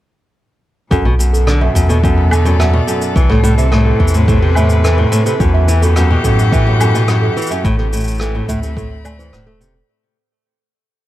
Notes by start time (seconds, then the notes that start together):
0.91 B1 F#2 B2 A4, kick, cabasa
1.05 B2
1.14 B3
1.19 F#2, cabasa
1.33 A4, cabasa
1.41 A4
1.47 D3, cross-stick, cabasa
1.61 F#2 E5
1.75 E2 F#2, kick, cabasa
1.89 B2 A4 D5, cabasa
2.03 F#2, kick, cabasa
2.31 D3 A4, cabasa, low woodblock
2.45 F#2, cabasa
2.60 F#2 E5, cross-stick, cabasa
2.73 B2
2.87 F#2 A4, cabasa
3.02 cabasa
3.16 C2 C3 E3, kick, cabasa
3.30 A2 A4, cross-stick
3.41 A2 C4, cabasa
3.58 C3 E5, cabasa
3.72 A2, cross-stick
3.77 B4
3.86 A4
4.00 E2 E3, kick
4.08 cabasa
4.14 A2, cabasa
4.28 A2 A4, kick, cabasa
4.42 C3
4.55 A2 E5, cabasa, low woodblock
4.70 cabasa
4.83 E3 A4, cross-stick, cabasa
4.98 A2
5.12 A2, cabasa
5.26 C3 A4, cabasa
5.40 E2 F#2 E3, kick, cabasa
5.54 E5
5.61 B3 G4
5.68 E3, cabasa
5.81 F#2 F#4 A4, cabasa
5.96 F#2, cross-stick, cabasa
6.11 B2
6.24 F#2 A2 A4, kick, cabasa
6.39 cabasa
6.52 E3 E5, kick, cabasa
6.67 F#2
6.80 F#2 A4, cabasa, low woodblock
6.95 B2, cabasa
7.08 F#2, cross-stick, cabasa
7.22 A4
7.37 E3, cabasa
7.42 cabasa
7.47 F#2 E5, cabasa
7.51 cabasa
7.64 A1 A2, kick, cabasa
7.78 C3 A4, cross-stick
7.91 A2 A3, cabasa
7.97 cabasa
8.00 cabasa
8.04 cabasa
8.07 cabasa
8.11 cabasa
8.14 cabasa
8.18 E3 C4 A4, cross-stick, cabasa
8.22 cabasa
8.35 A2
8.49 D2 A2 E5, kick, cabasa
8.53 B5
8.63 C3, cabasa
8.77 A2 A4, kick, cabasa
9.04 A3 D5, cabasa, low woodblock
9.18 E3 C5, cabasa
9.32 E1 A2 C5, cross-stick, cabasa
9.46 A3 A4
9.61 C3, cabasa
9.74 A4